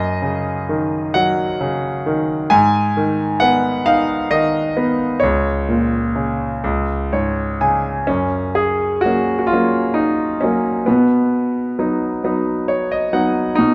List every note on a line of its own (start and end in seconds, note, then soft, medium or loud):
0.00 2.48 F#2 medium
0.00 1.11 D#5 medium
0.22 1.59 C#3 soft
0.69 2.05 D#3 soft
1.14 2.48 F#3 medium
1.14 2.13 F#5 medium
1.61 2.49 C#3 soft
2.06 2.50 D#3 medium
2.50 5.18 G#2 medium
2.50 3.43 G#5 medium
2.97 4.29 D#3 soft
3.40 4.75 B3 soft
3.40 3.87 F#5 medium
3.86 5.18 D#4 medium
3.86 4.32 F5 medium
4.31 5.19 D#3 soft
4.31 5.24 D#5 medium
4.77 5.21 B3 soft
5.20 6.59 C#2 medium
5.20 7.06 C#5 medium
5.68 6.60 A#2 soft
6.16 6.61 C#3 soft
6.64 8.04 C#2 medium
7.13 8.06 G#2 soft
7.13 7.57 C#5 medium
7.61 8.07 C#3 soft
7.61 8.05 G#5 medium
8.07 10.84 F#2 soft
8.07 8.57 C#4 medium
8.55 9.00 G#4 medium
9.01 9.37 F#4 medium
9.05 9.51 F#3 soft
9.05 9.52 A#3 soft
9.05 9.52 C#4 soft
9.39 9.48 F#4 soft
9.47 9.96 F4 medium
9.53 10.40 F#3 soft
9.53 10.41 A#3 soft
9.53 10.39 C#4 soft
9.94 10.42 D#4 medium
10.41 10.87 F#3 soft
10.41 10.87 A#3 soft
10.41 10.43 C#4 medium
10.41 10.87 C#4 soft
10.86 13.54 B2 soft
10.86 11.77 B3 medium
11.79 12.23 F#3 soft
11.79 12.23 B3 soft
11.79 12.23 D#4 soft
12.24 13.10 F#3 soft
12.24 13.11 B3 soft
12.24 13.11 D#4 soft
12.68 12.89 C#5 medium
12.92 13.12 D#5 medium
13.13 13.56 F#3 soft
13.13 13.57 B3 soft
13.13 13.54 D#4 soft
13.13 13.55 F#5 medium
13.55 13.74 B2 medium
13.55 13.74 D#4 medium